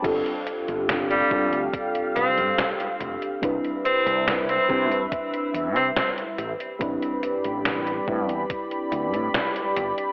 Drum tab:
CC |x---------------|----------------|----------------|
HH |xxxxxx-xxxxxxxxx|xxxxxx-xxxxxxxxx|xxxxxx-xxxxxxxxx|
SD |----o-------o---|----o-------o---|----o-------o---|
BD |o-----o-o-------|o-----o-o-------|o-----o-o-------|